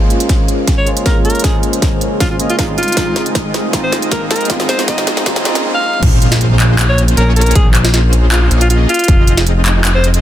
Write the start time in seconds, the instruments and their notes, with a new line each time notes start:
Already playing: ambient pad C#3 G#4 A#4, tine electric piano G#3 C#4 F4 C5, supersaw synth A#3 C#4 F4 G#4 C5, riser
0.10 closed hi-hat
0.20 closed hi-hat
0.29 kick, snare, closed hi-hat
0.48 closed hi-hat
0.67 kick, snare, closed hi-hat
0.78 alto saxophone C#5
0.85 tine electric piano G#3 C#4, closed hi-hat
0.89 tine electric piano F4
0.97 closed hi-hat
1.06 supersaw synth A#3 C#4 G#4 C#5, alto saxophone A#4, kick, snare, closed hi-hat
1.25 alto saxophone A#4, closed hi-hat
1.30 closed hi-hat
1.35 closed hi-hat
1.39 tine electric piano G#3 C5, closed hi-hat
1.44 supersaw synth A#3 C#4 G#4, tine electric piano C#4 A#4, alto saxophone G#4, kick, snare, closed hi-hat
1.63 closed hi-hat
1.73 closed hi-hat
1.82 kick, snare, closed hi-hat
2.01 closed hi-hat
2.20 alto saxophone F4, kick, snare, closed hi-hat
2.30 alto saxophone F4
2.40 supersaw synth A#3 C#4 F4 G#4 D#5, closed hi-hat
2.50 alto saxophone F4, closed hi-hat
2.58 tine electric piano G#3 C4 D#4 F4, alto saxophone F4, kick, snare, closed hi-hat
2.78 ambient pad F3 D#4 G#4, alto saxophone F4, closed hi-hat
2.83 closed hi-hat
2.88 closed hi-hat
2.92 tine electric piano G#3 C4, closed hi-hat
2.97 supersaw synth C4 D#4 F4 G#4 D#5, tine electric piano D#4, kick, snare, closed hi-hat
3.16 snare, closed hi-hat
3.26 closed hi-hat
3.35 kick, snare, closed hi-hat
3.54 snare, closed hi-hat
3.71 tine electric piano G#3 C4 D#4, supersaw synth C4 D#4 F4 G#4 D#5, kick, snare, closed hi-hat
3.75 tine electric piano F4
3.83 alto saxophone C5
3.92 snare, closed hi-hat
4.02 closed hi-hat
4.12 alto saxophone A#4, kick, snare, closed hi-hat
4.31 alto saxophone A#4, snare, closed hi-hat
4.36 closed hi-hat
4.41 closed hi-hat
4.45 tine electric piano G#3 C4, closed hi-hat
4.50 supersaw synth C4 D#4 F4 G#4 D#5, tine electric piano D#4 F4, kick, snare, closed hi-hat
4.60 snare
4.69 alto saxophone C5, snare, closed hi-hat
4.79 snare, closed hi-hat
4.86 tine electric piano G#3 C4 D#4, supersaw synth C4 D#4 F4 G#4 D#5, alto saxophone D#5, kick, snare, closed hi-hat
4.90 tine electric piano F4
4.98 snare
5.07 snare, closed hi-hat
5.17 snare
5.24 tine electric piano G#3 C4 D#4 F4, supersaw synth C4 D#4 F4 G#4 D#5, kick, snare, closed hi-hat, swell
5.36 snare
5.43 tine electric piano G#3 C4 D#4 F4, supersaw synth C4 D#4 F4 G#4 D#5, snare, closed hi-hat
5.55 snare, closed hi-hat
5.74 alto saxophone F5
5.84 high tom
5.94 mid tom
6.03 analog synth bass A#1, supersaw synth A#3 C#4 F4 G#4 C5, kick, closed hi-hat, crash, impact
6.22 closed hi-hat
6.32 snare, closed hi-hat
6.41 closed hi-hat
6.60 clap, closed hi-hat
6.79 clap, closed hi-hat
6.89 alto saxophone C#5
6.98 closed hi-hat
7.08 closed hi-hat
7.17 analog synth bass A#1, supersaw synth A#3 C#4 F4 G#4 C#5, alto saxophone A#4, closed hi-hat
7.36 alto saxophone A#4, closed hi-hat
7.41 closed hi-hat
7.46 closed hi-hat
7.51 closed hi-hat
7.55 analog synth bass A#1, alto saxophone G#4, kick, closed hi-hat
7.75 clap, closed hi-hat
7.85 snare, closed hi-hat
7.94 snare, closed hi-hat
8.13 closed hi-hat
8.32 alto saxophone F4, clap, closed hi-hat
8.42 alto saxophone F4
8.51 analog synth bass A#1, supersaw synth A#3 C#4 F4 G#4 D#5, closed hi-hat
8.61 alto saxophone F4, closed hi-hat
8.70 alto saxophone F4, closed hi-hat
8.89 alto saxophone F4, closed hi-hat
8.94 closed hi-hat
8.99 closed hi-hat
9.04 closed hi-hat
9.08 analog synth bass F1, supersaw synth C4 D#4 F4 G#4 D#5, kick, closed hi-hat
9.27 closed hi-hat
9.37 snare, closed hi-hat
9.47 closed hi-hat
9.66 clap, closed hi-hat
9.85 clap, closed hi-hat
9.95 alto saxophone C5
10.04 closed hi-hat
10.14 closed hi-hat